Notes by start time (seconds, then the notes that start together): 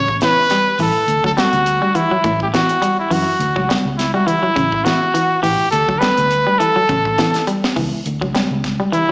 Already playing: A1 C#3 C#5
0.08 kick
0.21 E3 B4, snare, closed hi-hat
0.50 G3, snare, closed hi-hat
0.79 A1 E3 A4, open hi-hat
1.08 D2, closed hi-hat
1.24 D2 F#3 A4, kick
1.37 G3 F#4, snare, closed hi-hat
1.53 D2, closed hi-hat
1.66 closed hi-hat
1.82 G3
1.95 E3 E4, closed hi-hat
2.11 F#3, muted fingered electric bass stroke
2.24 A1 A2, kick, closed hi-hat
2.40 G4, kick
2.54 E3 F#4, snare, closed hi-hat
2.69 closed hi-hat
2.82 G3, closed hi-hat
2.99 E4
3.11 F#2 E3 F#4, open hi-hat
3.40 D2, closed hi-hat
3.56 C#2 F#3, kick
3.69 G3, muted fingered electric bass stroke, snare, closed hi-hat
3.85 C#2
3.97 E4, snare, closed hi-hat
4.14 G3 F#4
4.27 E3 E4, closed hi-hat
4.43 F#3
4.56 A1 C#3, kick, closed hi-hat
4.72 kick
4.84 E3 F#4, snare, closed hi-hat
5.14 E3, closed hi-hat
5.42 A1 E3 G4, open hi-hat
5.60 muted fingered electric bass stroke
5.71 D2 A4, closed hi-hat
5.88 D2 F#3, kick
5.99 G3 B4, snare, closed hi-hat
6.17 D2, closed hi-hat
6.31 closed hi-hat
6.47 G3
6.58 E3 A4, closed hi-hat
6.76 F#3, muted fingered electric bass stroke
6.89 A1 C#3, kick, closed hi-hat
7.05 kick
7.18 E3, snare, closed hi-hat
7.34 snare, closed hi-hat
7.47 G3, closed hi-hat
7.64 snare
7.76 C#2 E3, kick, open hi-hat
8.06 D2, closed hi-hat
8.21 C#2 F#3, kick
8.35 G3, muted fingered electric bass stroke, snare, closed hi-hat
8.51 C#2
8.64 kick, snare, closed hi-hat
8.80 G3
8.92 E3 E4, closed hi-hat